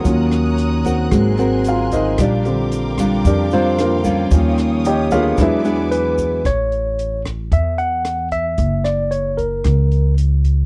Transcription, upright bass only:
0.05 1.08 D#2 medium
1.12 2.14 G#1 medium
2.19 3.21 A#1 medium
3.25 4.27 F2 medium
4.31 5.34 D#2 medium
5.38 6.41 E2 medium
6.45 7.47 A1 medium
7.52 8.54 E2 medium
8.58 9.61 F#1 medium
9.65 10.65 C#2 medium

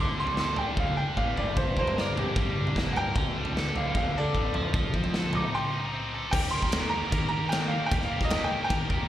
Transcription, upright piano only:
0.00 0.17 D6 medium
0.20 0.38 C6 medium
0.40 0.58 C6 medium
0.59 0.77 G5 medium
0.80 0.98 F5 medium
0.97 1.16 G5 medium
1.17 1.36 F5 medium
1.38 1.56 D5 medium
1.57 1.76 C5 medium
1.79 1.97 C5 medium
1.99 2.17 D5 medium
2.19 2.56 G4 medium
2.93 2.95 F#5 medium
2.97 3.73 G5 loud
3.77 3.95 F5 medium
3.97 4.15 F5 medium
4.17 4.91 A4 medium
4.17 4.93 D5 loud
5.35 5.53 D6 medium
5.54 6.29 G5 medium
5.54 6.31 C6 medium
6.31 6.52 G5 medium
6.51 6.88 C6 medium
6.89 7.27 A#5 medium
7.28 7.50 A#5 medium
7.49 7.71 G5 medium
7.68 7.90 F5 medium
7.86 8.07 G5 medium
8.05 8.28 F5 medium
8.24 8.45 D#5 medium
8.44 8.63 G5 medium
8.64 9.08 G5 medium

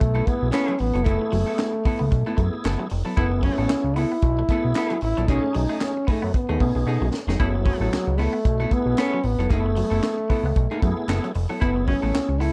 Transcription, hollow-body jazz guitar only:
0.00 muted hollow-body jazz guitar stroke soft
0.15 0.25 B3 medium
0.15 0.25 E4 medium
0.15 0.26 A4 medium
0.26 muted hollow-body jazz guitar stroke soft
0.41 muted hollow-body jazz guitar stroke soft
0.51 0.72 B3 medium
0.51 0.73 E4 medium
0.51 0.73 A4 medium
0.78 muted hollow-body jazz guitar stroke soft
0.94 1.03 B3 medium
0.94 1.04 E4 medium
0.94 1.05 A4 medium
1.04 1.25 B3 medium
1.04 1.20 E4 loud
1.04 1.19 A4 medium
1.21 muted hollow-body jazz guitar stroke soft
1.32 muted hollow-body jazz guitar stroke soft
1.46 1.57 B3 medium
1.46 1.58 E4 medium
1.46 1.58 A4 medium
1.59 muted hollow-body jazz guitar stroke soft
1.73 muted hollow-body jazz guitar stroke soft
1.85 2.05 B3 medium
1.85 2.00 E4 medium
1.85 1.99 A4 medium
2.00 muted hollow-body jazz guitar stroke soft
2.12 muted hollow-body jazz guitar stroke soft
2.26 2.38 B3 medium
2.26 2.38 E4 medium
2.26 2.39 A4 medium
2.39 muted hollow-body jazz guitar stroke soft
2.54 muted hollow-body jazz guitar stroke soft
2.64 2.84 B3 medium
2.64 2.85 E4 medium
2.64 2.85 A4 medium
2.91 muted hollow-body jazz guitar stroke soft
3.05 3.15 B3 medium
3.05 3.16 E4 medium
3.05 3.17 A4 medium
3.16 3.37 B3 medium
3.16 3.32 E4 medium
3.16 3.30 A4 loud
3.32 muted hollow-body jazz guitar stroke soft
3.43 muted hollow-body jazz guitar stroke soft
3.58 3.70 B3 medium
3.58 3.70 E4 medium
3.58 3.71 A4 medium
3.71 muted hollow-body jazz guitar stroke soft
3.86 muted hollow-body jazz guitar stroke soft
3.97 4.16 B3 medium
3.97 4.13 E4 medium
3.97 4.11 A4 medium
4.13 muted hollow-body jazz guitar stroke soft
4.23 muted hollow-body jazz guitar stroke soft
4.39 muted hollow-body jazz guitar stroke soft
4.50 4.69 B3 medium
4.50 4.65 E4 medium
4.50 4.64 A4 medium
4.65 muted hollow-body jazz guitar stroke soft
4.76 4.96 B3 medium
4.76 4.96 E4 medium
4.76 4.97 A4 medium
5.03 muted hollow-body jazz guitar stroke soft
5.17 5.28 B3 medium
5.17 5.29 E4 medium
5.17 5.30 A4 medium
5.29 5.48 A3 loud
5.29 5.44 D#4 loud
5.29 5.43 G#4 medium
5.44 muted hollow-body jazz guitar stroke soft
5.55 muted hollow-body jazz guitar stroke soft
5.70 5.80 A3 medium
5.70 5.81 D#4 medium
5.70 5.82 G#4 medium
5.82 muted hollow-body jazz guitar stroke soft
5.97 muted hollow-body jazz guitar stroke soft
6.08 6.28 A3 medium
6.08 6.23 D#4 medium
6.08 6.22 G#4 medium
6.23 muted hollow-body jazz guitar stroke soft
6.35 muted hollow-body jazz guitar stroke soft
6.49 6.60 A3 medium
6.49 6.61 D#4 medium
6.49 6.61 G#4 medium
6.62 muted hollow-body jazz guitar stroke soft
6.75 muted hollow-body jazz guitar stroke soft
6.87 7.06 A3 medium
6.87 7.07 D#4 medium
6.87 7.07 G#4 medium
7.13 muted hollow-body jazz guitar stroke soft
7.28 7.39 A3 medium
7.28 7.40 D#4 medium
7.28 7.41 G#4 medium
7.40 7.59 B3 medium
7.40 7.54 E4 medium
7.40 7.53 A4 medium
7.54 muted hollow-body jazz guitar stroke soft
7.66 muted hollow-body jazz guitar stroke medium
7.81 7.91 B3 medium
7.81 7.91 E4 medium
7.81 7.92 A4 medium
7.92 muted hollow-body jazz guitar stroke soft
8.07 muted hollow-body jazz guitar stroke medium
8.18 8.38 B3 medium
8.18 8.34 E4 medium
8.18 8.33 A4 medium
8.34 muted hollow-body jazz guitar stroke soft
8.46 muted hollow-body jazz guitar stroke soft
8.60 8.71 B3 medium
8.60 8.72 E4 medium
8.60 8.72 A4 medium
8.72 muted hollow-body jazz guitar stroke soft
8.87 muted hollow-body jazz guitar stroke soft
8.98 9.17 B3 medium
8.98 9.18 E4 medium
8.98 9.18 A4 medium
9.24 muted hollow-body jazz guitar stroke soft
9.39 9.48 B3 medium
9.39 9.50 E4 medium
9.39 9.50 A4 medium
9.50 9.71 B3 medium
9.50 9.64 E4 medium
9.50 9.63 A4 medium
9.65 muted hollow-body jazz guitar stroke soft
9.75 muted hollow-body jazz guitar stroke soft
9.90 10.01 B3 medium
9.90 10.02 E4 medium
9.90 10.03 A4 medium
10.03 muted hollow-body jazz guitar stroke soft
10.18 muted hollow-body jazz guitar stroke soft
10.30 10.49 B3 medium
10.30 10.45 E4 medium
10.30 10.44 A4 medium
10.45 muted hollow-body jazz guitar stroke soft
10.56 muted hollow-body jazz guitar stroke soft
10.71 10.81 B3 medium
10.71 10.81 E4 medium
10.71 10.82 A4 medium
10.82 muted hollow-body jazz guitar stroke soft
10.97 muted hollow-body jazz guitar stroke soft
11.08 11.28 B3 medium
11.08 11.29 E4 loud
11.08 11.29 A4 loud
11.35 muted hollow-body jazz guitar stroke soft
11.49 11.59 B3 medium
11.49 11.60 E4 medium
11.49 11.61 A4 medium
11.60 11.81 B3 medium
11.60 11.75 E4 loud
11.60 11.74 A4 loud
11.75 muted hollow-body jazz guitar stroke soft
11.86 muted hollow-body jazz guitar stroke soft
12.02 12.13 B3 medium
12.02 12.14 E4 medium
12.02 12.14 A4 medium
12.14 muted hollow-body jazz guitar stroke medium
12.29 muted hollow-body jazz guitar stroke soft
12.40 12.53 B3 medium
12.40 12.53 E4 medium
12.40 12.53 A4 medium

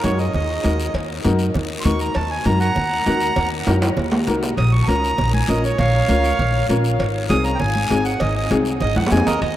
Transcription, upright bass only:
0.04 0.28 F#2 loud
0.34 0.59 D#2 medium
0.65 0.89 D#2 medium
0.94 1.19 D#2 loud
1.25 1.49 F#2 loud
1.55 1.79 D#2 medium
1.85 2.09 D#2 medium
2.16 2.40 D#2 loud
2.46 2.70 F#2 loud
2.76 3.01 D#2 medium
3.07 3.31 D#2 medium
3.37 3.61 D#2 loud
3.67 3.91 F#2 loud
3.97 4.22 D#2 medium
4.27 4.51 C2 medium
4.57 4.82 A#1 loud
4.88 5.12 C#2 loud
5.19 5.43 A#1 medium
5.49 5.73 A#1 medium
5.79 6.03 A#1 loud
6.09 6.33 C#2 loud
6.39 6.63 A#1 medium
6.69 6.93 A#1 medium
6.99 7.24 G#1 loud
7.30 7.54 C2 loud
7.61 7.85 G#1 medium
7.91 8.15 G#1 loud
8.21 8.45 G#1 loud
8.51 8.75 C2 loud
8.82 8.94 G#1 medium
8.97 9.10 F#2 medium
9.12 9.25 F2 medium
9.27 9.40 D#2 medium
9.42 9.56 D#2 loud

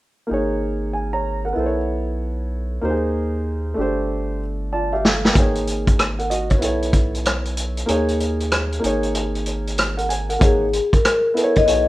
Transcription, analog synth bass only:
0.31 1.53 G#1 medium
1.57 2.79 B1 medium
2.83 3.74 D#2 medium
3.78 5.32 G1 medium
5.36 6.58 G#1 medium
6.62 7.84 B1 medium
7.89 8.79 D#2 medium
8.84 10.37 G#1 medium
10.41 10.80 G#1 loud
11.57 11.65 A#1 medium
11.68 11.88 B1 loud

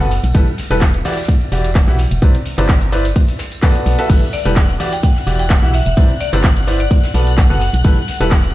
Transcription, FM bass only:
0.00 0.19 F#1 medium
0.24 0.33 B1 loud
0.35 0.45 G1 loud
0.71 1.02 E1 loud
1.52 1.84 E1 medium
1.88 2.07 B1 medium
2.11 2.20 E1 loud
2.22 2.32 C2 loud
2.58 3.13 G1 loud
3.86 3.97 B1 medium
4.10 4.20 G1 loud
4.46 4.77 E1 loud
5.27 5.59 E1 medium
5.63 5.82 B1 medium
5.86 5.95 E1 loud
5.97 6.07 C2 loud
6.33 6.88 G1 loud
7.14 7.47 B1 medium
7.50 7.69 F#1 loud
7.74 7.83 B1 loud
7.85 7.95 G1 loud
8.20 8.52 E1 loud

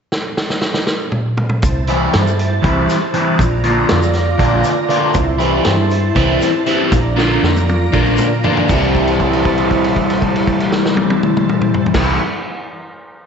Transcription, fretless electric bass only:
1.63 2.07 C2 medium
2.14 2.58 G2 medium
2.63 2.86 C2 medium
3.39 3.83 A#1 medium
3.91 4.34 F2 medium
4.39 4.62 A#1 medium
5.14 5.59 C2 medium
5.66 6.10 G2 medium
6.16 6.39 C2 loud
6.92 7.37 A#1 medium
7.42 7.87 F2 medium
7.94 8.16 A#1 medium
8.70 11.85 C2 medium
11.95 12.16 C2 medium

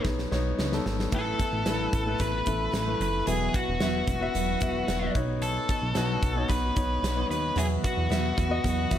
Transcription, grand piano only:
0.00 0.31 B3 medium
0.00 0.32 D#4 medium
0.00 0.32 C#5 medium
0.00 1.14 D#5 medium
0.31 0.65 B3 medium
0.31 0.65 D#4 medium
0.31 0.65 C#5 medium
0.72 1.05 B3 medium
0.72 1.06 D#4 medium
0.72 1.06 A4 medium
1.12 1.90 A2 soft
1.12 1.90 E3 soft
1.12 1.57 A3 medium
1.12 1.57 E4 medium
1.12 1.58 B4 medium
1.67 2.00 A3 medium
1.67 2.00 E4 medium
1.67 2.01 B4 medium
2.06 2.40 A3 medium
2.06 2.40 E4 medium
2.06 2.41 B4 medium
2.46 2.80 A3 medium
2.46 2.80 E4 medium
2.46 2.81 A4 medium
2.86 3.20 A3 medium
2.86 3.21 E4 medium
2.86 3.21 B4 medium
3.27 4.04 B2 medium
3.27 3.72 B3 medium
3.27 3.72 F#4 medium
3.27 3.72 E5 medium
3.80 4.14 B3 medium
3.80 4.14 F#4 medium
3.80 4.15 E5 medium
4.21 4.54 B3 medium
4.21 4.55 F#4 medium
4.21 4.55 E5 loud
4.60 4.94 B3 medium
4.60 4.95 F#4 medium
4.60 4.96 E5 medium
5.01 5.13 B3 medium
5.01 5.16 F#4 medium
5.01 5.16 E5 medium
5.14 5.82 B3 medium
5.14 5.82 D#4 medium
5.14 5.83 C#5 medium
5.95 6.29 B3 medium
5.95 6.30 D#4 medium
5.95 6.30 F#4 medium
6.36 6.69 B3 medium
6.36 6.70 D#4 medium
6.36 6.70 C#5 medium
6.75 7.09 B3 medium
6.75 7.10 D#4 medium
6.75 7.10 C#5 medium
7.16 7.49 B3 medium
7.16 7.50 D#4 medium
7.16 7.50 C#5 medium
7.56 8.33 B2 medium
7.56 8.01 B3 medium
7.56 8.01 F#4 medium
7.56 8.02 E5 medium
8.09 8.43 B3 medium
8.09 8.44 F#4 medium
8.09 8.44 E5 medium
8.49 8.83 B3 medium
8.49 8.84 F#4 medium
8.49 8.84 D#5 loud
8.90 8.98 B3 medium
8.90 8.98 F#4 medium
8.90 8.98 E5 medium

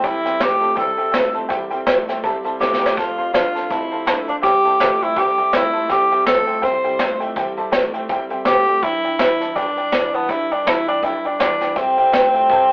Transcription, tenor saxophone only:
0.05 0.44 E4 loud
0.42 0.78 G4 loud
0.78 1.31 A4 medium
2.60 2.99 G4 medium
2.97 3.33 F4 medium
3.33 3.72 F4 medium
3.71 4.28 E4 medium
4.29 4.35 D4 medium
4.43 5.04 G4 loud
5.03 5.20 E4 medium
5.18 5.54 G4 medium
5.55 5.93 E4 loud
5.91 6.25 G4 loud
6.26 6.65 A4 loud
6.64 7.21 C5 medium
8.47 8.84 G4 loud
8.83 9.20 E4 loud
9.21 9.57 E4 loud
9.56 10.16 D4 medium
10.14 10.32 B3 medium
10.31 10.54 E4 loud
10.52 10.70 D4 medium
10.68 10.87 E4 loud
10.88 11.06 D4 loud
11.04 11.28 E4 medium
11.26 11.40 D4 medium
11.42 11.79 D4 medium
11.77 12.72 C4 loud

